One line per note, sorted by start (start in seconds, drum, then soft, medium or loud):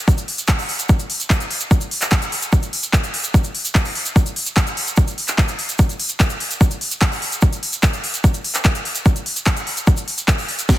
0.08 kick loud
0.08 closed hi-hat medium
0.08 shaker medium
0.18 closed hi-hat medium
0.18 shaker soft
0.28 open hi-hat loud
0.38 closed hi-hat medium
0.38 shaker medium
0.48 kick loud
0.48 clap loud
0.48 closed hi-hat medium
0.48 shaker medium
0.59 open hi-hat medium
0.59 shaker soft
0.69 open hi-hat loud
0.79 closed hi-hat medium
0.79 shaker medium
0.89 kick loud
0.89 closed hi-hat medium
0.89 shaker medium
0.99 closed hi-hat medium
0.99 shaker soft
1.10 open hi-hat loud
1.20 closed hi-hat medium
1.20 shaker medium
1.30 kick loud
1.30 clap loud
1.30 closed hi-hat medium
1.30 shaker medium
1.40 closed hi-hat medium
1.40 shaker soft
1.51 open hi-hat loud
1.60 closed hi-hat medium
1.60 shaker medium
1.71 kick loud
1.71 closed hi-hat medium
1.71 shaker medium
1.81 closed hi-hat medium
1.81 shaker soft
1.91 open hi-hat loud
2.02 clap soft
2.02 closed hi-hat medium
2.02 shaker medium
2.11 kick loud
2.11 clap loud
2.11 closed hi-hat medium
2.11 shaker medium
2.22 closed hi-hat medium
2.22 shaker soft
2.32 open hi-hat loud
2.42 closed hi-hat medium
2.42 shaker medium
2.53 kick loud
2.53 closed hi-hat medium
2.53 shaker medium
2.63 closed hi-hat medium
2.63 shaker soft
2.73 open hi-hat loud
2.83 closed hi-hat medium
2.83 shaker medium
2.93 kick loud
2.93 clap loud
2.93 closed hi-hat medium
2.93 shaker medium
3.04 closed hi-hat medium
3.04 shaker soft
3.14 open hi-hat loud
3.24 closed hi-hat medium
3.24 shaker medium
3.34 kick loud
3.34 closed hi-hat medium
3.34 shaker medium
3.44 closed hi-hat medium
3.44 shaker soft
3.55 open hi-hat loud
3.65 closed hi-hat medium
3.65 shaker medium
3.75 kick loud
3.75 clap loud
3.75 closed hi-hat medium
3.75 shaker medium
3.85 open hi-hat medium
3.85 shaker soft
3.95 open hi-hat loud
4.06 closed hi-hat medium
4.06 shaker medium
4.16 kick loud
4.16 closed hi-hat medium
4.16 shaker medium
4.26 closed hi-hat medium
4.26 shaker soft
4.36 open hi-hat loud
4.46 closed hi-hat medium
4.46 shaker medium
4.57 kick loud
4.57 clap loud
4.57 closed hi-hat medium
4.57 shaker medium
4.67 closed hi-hat medium
4.67 shaker soft
4.77 open hi-hat loud
4.87 closed hi-hat medium
4.87 shaker medium
4.97 kick loud
4.97 closed hi-hat medium
4.97 shaker medium
5.08 closed hi-hat medium
5.08 shaker soft
5.18 open hi-hat loud
5.28 clap soft
5.28 closed hi-hat medium
5.28 shaker medium
5.38 kick loud
5.38 clap loud
5.38 closed hi-hat medium
5.38 shaker medium
5.48 closed hi-hat medium
5.48 shaker soft
5.59 open hi-hat loud
5.69 closed hi-hat medium
5.69 shaker medium
5.79 kick loud
5.79 closed hi-hat medium
5.79 shaker medium
5.89 closed hi-hat medium
5.89 shaker soft
6.00 open hi-hat loud
6.09 closed hi-hat medium
6.09 shaker medium
6.20 kick loud
6.20 clap loud
6.20 closed hi-hat medium
6.20 shaker medium
6.29 closed hi-hat medium
6.29 shaker soft
6.40 open hi-hat loud
6.51 closed hi-hat medium
6.51 shaker medium
6.61 kick loud
6.61 closed hi-hat medium
6.61 shaker medium
6.71 closed hi-hat medium
6.71 shaker soft
6.81 open hi-hat loud
6.91 closed hi-hat medium
6.91 shaker medium
7.01 kick loud
7.01 clap loud
7.01 closed hi-hat medium
7.01 shaker medium
7.12 open hi-hat medium
7.12 shaker soft
7.22 open hi-hat loud
7.32 closed hi-hat medium
7.32 shaker medium
7.42 kick loud
7.42 closed hi-hat medium
7.42 shaker medium
7.53 closed hi-hat medium
7.53 shaker soft
7.63 open hi-hat loud
7.73 closed hi-hat medium
7.73 shaker medium
7.83 kick loud
7.83 clap loud
7.83 closed hi-hat medium
7.83 shaker medium
7.93 closed hi-hat medium
7.93 shaker soft
8.04 open hi-hat loud
8.14 closed hi-hat medium
8.14 shaker medium
8.24 kick loud
8.24 closed hi-hat medium
8.24 shaker medium
8.34 closed hi-hat medium
8.34 shaker soft
8.44 open hi-hat loud
8.55 clap soft
8.55 closed hi-hat medium
8.55 shaker medium
8.64 kick loud
8.64 clap loud
8.64 closed hi-hat medium
8.64 shaker medium
8.75 closed hi-hat medium
8.75 shaker soft
8.85 open hi-hat loud
8.95 closed hi-hat medium
8.95 shaker medium
9.05 kick loud
9.05 closed hi-hat medium
9.05 shaker medium
9.16 closed hi-hat medium
9.16 shaker soft
9.26 open hi-hat loud
9.36 closed hi-hat medium
9.36 shaker medium
9.46 kick loud
9.46 clap loud
9.46 closed hi-hat medium
9.46 shaker medium
9.57 closed hi-hat medium
9.57 shaker soft
9.67 open hi-hat loud
9.77 closed hi-hat medium
9.77 shaker medium
9.87 kick loud
9.87 closed hi-hat medium
9.87 shaker medium
9.97 closed hi-hat medium
9.97 shaker soft
10.08 open hi-hat loud
10.18 closed hi-hat medium
10.18 shaker medium
10.28 kick loud
10.28 clap loud
10.28 closed hi-hat medium
10.28 shaker medium
10.38 open hi-hat medium
10.38 shaker soft
10.48 open hi-hat loud
10.59 closed hi-hat medium
10.59 shaker medium
10.69 kick loud
10.69 snare medium
10.69 closed hi-hat medium
10.69 shaker medium